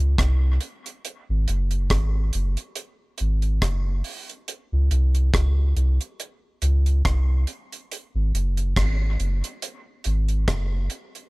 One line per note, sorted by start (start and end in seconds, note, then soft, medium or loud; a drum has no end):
0.00 0.16 C#2 medium
0.18 0.59 C2 loud
0.18 kick loud
0.18 cross-stick loud
0.18 closed hi-hat medium
0.61 closed hi-hat medium
0.86 closed hi-hat medium
1.05 closed hi-hat medium
1.29 1.46 G#1 medium
1.48 1.88 F#1 medium
1.48 closed hi-hat medium
1.71 closed hi-hat soft
1.90 2.31 G#1 loud
1.90 kick loud
1.90 cross-stick loud
1.90 closed hi-hat medium
2.33 2.57 F#1 medium
2.33 closed hi-hat medium
2.57 closed hi-hat medium
2.75 closed hi-hat medium
3.18 3.60 G#1 medium
3.18 closed hi-hat medium
3.42 closed hi-hat soft
3.62 4.02 F#1 medium
3.62 kick loud
3.62 cross-stick loud
3.62 closed hi-hat medium
4.04 open hi-hat medium
4.29 closed hi-hat medium
4.48 closed hi-hat medium
4.72 4.90 C#2 medium
4.91 5.31 C2 medium
4.91 closed hi-hat medium
5.15 closed hi-hat soft
5.34 5.74 C#2 medium
5.34 kick loud
5.34 cross-stick loud
5.34 closed hi-hat medium
5.76 5.99 C2 medium
5.76 closed hi-hat medium
6.01 closed hi-hat medium
6.20 closed hi-hat medium
6.62 7.02 C#2 medium
6.62 closed hi-hat medium
6.86 closed hi-hat soft
7.05 7.45 C2 loud
7.05 kick loud
7.05 cross-stick loud
7.05 closed hi-hat medium
7.47 closed hi-hat medium
7.72 closed hi-hat medium
7.92 closed hi-hat medium
8.15 8.32 G#1 medium
8.34 8.74 F#1 medium
8.34 closed hi-hat medium
8.57 closed hi-hat soft
8.76 9.17 G#1 medium
8.76 kick loud
8.76 cross-stick loud
8.76 closed hi-hat medium
9.20 9.42 F#1 medium
9.20 closed hi-hat medium
9.44 closed hi-hat medium
9.62 closed hi-hat medium
10.04 10.46 G#1 medium
10.04 closed hi-hat medium
10.29 closed hi-hat soft
10.48 10.88 F#1 loud
10.48 kick loud
10.48 cross-stick loud
10.48 closed hi-hat medium
10.90 closed hi-hat medium
11.15 closed hi-hat soft